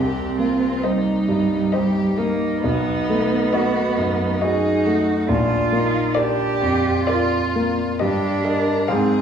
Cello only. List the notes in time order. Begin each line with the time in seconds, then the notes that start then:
Already playing: C4
0.84 G3
2.17 A#3
2.62 B3
4.41 D#4
5.28 F4
6.16 G4
7.07 F4
8.00 D4
8.88 C4